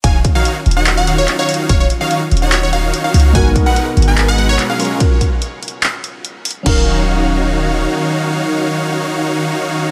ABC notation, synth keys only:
X:1
M:4/4
L:1/8
Q:1/4=145
K:Ebm
V:1 name="Synth keys"
z8 | z8 | [A,CEGB]6- [A,CEGB] [A,DFGB]- | [A,DFGB] z6 z |
[G,DEBf]8- | [G,DEBf]8 |]